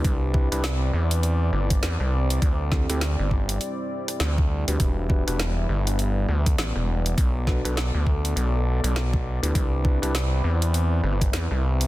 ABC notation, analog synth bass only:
X:1
M:4/4
L:1/16
Q:"Swing 16ths" 1/4=101
K:Clyd
V:1 name="Analog synth bass" clef=bass
C,,3 C,,3 E,,4 G,,,2 E,, C,,3 | D,,3 D,,2 G,,,3 z4 D,,3 D,, | E,,,3 E,,,3 G,,,4 D,,2 A,,, E,,,3 | B,,,3 B,,,2 D,,3 B,,,3 B,,,4 D,, |
C,,3 C,,3 E,,4 G,,,2 E,, C,,3 |]